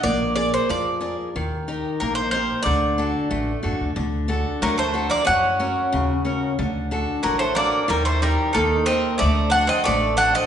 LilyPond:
<<
  \new Staff \with { instrumentName = "Bouzouki" } { \time 2/4 \tempo 4 = 92 d''8 d''16 c''16 d''8. r16 | r4 bes'16 c''16 c''8 | d''4. r8 | r4 bes'16 c''8 d''16 |
fis''4. r8 | r4 bes'16 c''16 d''8 | bes'16 c''16 bes'8 a'8 ees''8 | d''8 fis''16 ees''16 d''8 fis''16 ees''16 | }
  \new Staff \with { instrumentName = "Steel-string acoustic guitar" } { \time 2/4 bes8 <aes' bes' d''>8 f8 <aes' bes' d''>8 | ees8 <ees' g' bes'>8 bes8 <ees' g' bes'>8 | d8 <d' fis' a'>8 a8 <d' fis' a'>8 | d8 <d' fis' a'>8 a8 <d' fis' a'>8 |
fis8 <cis' fis' ais'>8 cis8 <cis' fis' ais'>8 | d8 <d' fis' a'>8 fis8 <d' fis' a'>8 | ees8 <ees' g'>8 bes8 <ees' g' bes'>8 | d8 <d' fis' a'>8 a8 <d' fis' a'>8 | }
  \new Staff \with { instrumentName = "Bouzouki" } { \time 2/4 r2 | r2 | r2 | r4 fis16 a8 bes16 |
cis'4. r8 | r4 fis16 a16 bes8 | g16 a16 g8 ees8 c'8 | a8 d'16 c'16 a8 d'16 c'16 | }
  \new Staff \with { instrumentName = "Upright bass" } { \clef bass \time 2/4 bes,,4 f,4 | ees,4 bes,,4 | d,4 a,,8 fis,16 d,16 | d,4 d,4 |
fis,4 ees,4 | d,4 a,,4 | ees,4 ees,4 | d,4 a,,4 | }
>>